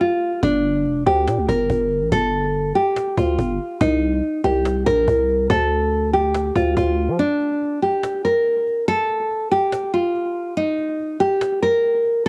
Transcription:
0.00 F4, cajon slap
0.43 G1 D4, cajon bass
0.64 cajon slap
0.85 F1, cajon slap
1.06 D2 G4
1.27 A#2, cajon slap
1.38 D2
1.49 G1 A#4, cajon bass
1.70 G1, cajon bass
1.91 cajon slap
2.01 A1
2.12 G1 A4, cajon bass
2.33 cajon slap
2.55 cajon slap
2.75 G4, cajon slap
2.96 cajon slap
3.17 D2 F4, cajon bass
3.39 G1, cajon bass
3.81 C2 D#4, cajon bass
4.02 cajon slap
4.24 cajon slap
4.44 C2 G4
4.65 cajon slap
4.86 A#1 A#4, cajon bass
5.08 C2, cajon bass
5.29 cajon slap
5.50 D2 A4, cajon bass
5.71 cajon slap
5.92 cajon slap
5.97 cajon slap
6.03 cajon slap
6.08 cajon slap
6.13 G4
6.34 cajon slap
6.55 D2 F4, cajon bass
6.77 D2 F4, cajon bass
7.08 F3
7.19 D4
7.40 cajon slap
7.61 cajon slap
7.82 G4, cajon slap
8.03 cajon slap
8.25 A#4, cajon slap
8.45 cajon slap
8.67 cajon slap
8.88 A4
9.09 cajon slap
9.31 cajon slap
9.51 G4, cajon slap
9.72 cajon slap
9.94 F4
10.14 cajon slap
10.57 D#4, cajon slap
10.78 cajon slap
11.00 cajon slap
11.20 G4, cajon slap
11.41 cajon slap
11.62 A#4, cajon slap
11.83 cajon slap
12.05 cajon slap

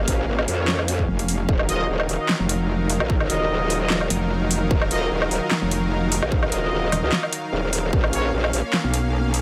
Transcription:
Already playing: A#3 C#4 F5
0.08 A#1, kick, closed hi-hat
0.28 G#1
0.39 low woodblock
0.48 F2, open hi-hat
0.59 F4 A#4 C#5
0.68 snare, clap
0.79 low woodblock
0.88 closed hi-hat
0.99 kick
1.08 F1
1.19 closed hi-hat
1.28 open hi-hat
1.49 D#1 D#3 F#3 D#4 A#4 F5, kick
1.59 low woodblock
1.69 F4 F#4 D#5, closed hi-hat
1.89 D#1
2.00 low woodblock
2.09 D#1, open hi-hat
2.20 F4 F#4 D#5
2.29 snare, clap
2.40 F1
2.49 closed hi-hat
2.90 open hi-hat
3.00 A#1, low woodblock
3.10 kick
3.20 low woodblock
3.30 D#1 F4 F#4 D#5, closed hi-hat
3.50 D#1
3.70 open hi-hat
3.81 F4 F#4 D#5
3.90 snare, clap
4.01 low woodblock
4.10 F1, closed hi-hat
4.51 open hi-hat
4.71 D#1, kick
4.82 low woodblock
4.91 F4 F#4 D#5, closed hi-hat
5.11 D#1
5.22 low woodblock
5.31 D#1, open hi-hat
5.42 F4 F#4 D#5
5.51 snare, clap
5.62 F1
5.71 closed hi-hat
6.12 open hi-hat
6.22 A#1, low woodblock
6.32 kick
6.43 low woodblock
6.52 D#1 F4 F#4 D#5, closed hi-hat
6.72 D#1
6.92 D#1, open hi-hat, low woodblock
7.03 C#2 F4 F#4 D#5
7.12 snare, clap
7.23 low woodblock
7.33 closed hi-hat
7.53 D#1
7.73 open hi-hat
7.93 A#1 A#3 C#4, kick
8.04 low woodblock
8.13 F4 A#4 C#5, closed hi-hat
8.33 A#1
8.44 low woodblock
8.53 A#1, open hi-hat
8.64 F4 A#4 C#5
8.73 snare, clap
8.84 B1
8.94 closed hi-hat
9.34 open hi-hat

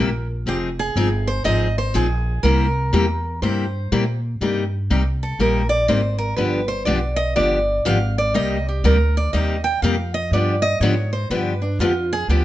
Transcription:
Already playing: A#1 A#4
0.46 F1 F3 C4 D#4 G4 G#4
0.79 G#4
0.96 G1 F3 C4 D#4 G#4
1.27 C5
1.44 G#1 F3 C4 D#4 G#4 D#5
1.78 C5
1.94 A#1 F3 C4 D#4 G#4
2.43 C2 C3 G3 A#3 E4 G4 A#4
2.93 E2 C3 G3 A#3 E4 G4
3.42 G2 C3 G3 A#3 E4 G4 C5
3.92 A#2 C3 G3 A#3 E4 G4
4.41 G2 C3 G3 A#3 D#4 G4
4.90 C2 C3 G3 A#3 D#4 G4
5.23 A4
5.39 A#1 C3 G3 A#3 D#4 G4 A#4
5.69 D5
5.88 G#1 C3 G3 A#3 D#4 G4 C5
6.18 A#4
6.36 G1 D3 F3 B3 D4 G4 B4
6.68 C5
6.85 B1 D3 F3 B3 D4 G4 D5
7.16 D#5
7.36 G1 D3 F3 B3 D4 G4 D5
7.85 G#1 D3 F3 B3 D4 G4 F5
8.18 D5
8.34 C2 C3 G3 A#3 D#4 G4 D#5
8.69 G4
8.84 D2 C3 G3 A#3 D#4 G4 A#4
9.17 D5
9.33 D#2 C3 G3 A#3 D#4 G4 D#5
9.64 G5
9.82 F2 C3 G3 A#3 D#4 G4 F5
10.14 D#5
10.31 G2 D3 F3 B3 D4 G4 D5
10.62 D#5
10.80 G#2 D3 F3 B3 D4 G4 C#5
11.13 C5
11.30 G2 D3 F3 B3 D4 G4 B4
11.62 D4
11.79 F2 D3 F3 B3 D4 F4 G4
12.13 G#4
12.28 D2 D3 F3 B3 D4 G4

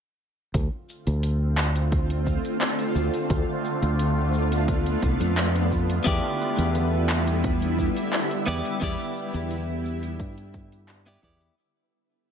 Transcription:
0.54 D2 D3 A3 C4 F4, kick, closed hi-hat, shaker
0.89 shaker
1.07 D2, closed hi-hat, shaker
1.23 closed hi-hat, shaker
1.58 clap, shaker
1.76 closed hi-hat, shaker
1.92 kick, closed hi-hat, shaker
2.10 closed hi-hat
2.27 kick, shaker
2.45 closed hi-hat, shaker
2.61 clap, closed hi-hat, shaker
2.79 closed hi-hat
2.95 D2, shaker
3.14 closed hi-hat, shaker
3.30 D2 B3, kick, closed hi-hat, shaker
3.65 shaker
3.82 D2, closed hi-hat, shaker
3.99 closed hi-hat, shaker
4.34 shaker
4.52 closed hi-hat, shaker
4.68 kick, closed hi-hat, shaker
4.86 closed hi-hat
5.03 C2, kick, shaker
5.20 F2, closed hi-hat, shaker
5.38 clap, closed hi-hat, shaker
5.56 closed hi-hat
5.72 kick, shaker
5.90 closed hi-hat, shaker
6.04 E2 G3 B3 E4 G4 D5, kick, closed hi-hat, shaker
6.41 shaker
6.58 E2, closed hi-hat, shaker
6.75 closed hi-hat, shaker
7.09 clap, shaker
7.28 closed hi-hat, shaker
7.44 kick, closed hi-hat, shaker
7.62 closed hi-hat
7.79 kick, shaker
7.97 closed hi-hat, shaker
8.13 clap, closed hi-hat, shaker
8.31 closed hi-hat
8.46 E2 B3 E4 G4 D5, shaker
8.65 closed hi-hat, shaker
8.80 E2 B3 E4 G4 D5, kick, closed hi-hat, shaker
9.16 shaker
9.34 E2, closed hi-hat, shaker
9.51 closed hi-hat, shaker
9.85 shaker
10.03 closed hi-hat, shaker
10.20 G2, kick, closed hi-hat, shaker
10.38 closed hi-hat
10.54 kick, shaker
10.72 closed hi-hat, shaker
10.89 clap, closed hi-hat, shaker
11.06 B3 E4 G4 D5, closed hi-hat
11.22 E2 B3 E4 G4 D5, kick, shaker
11.41 closed hi-hat, shaker

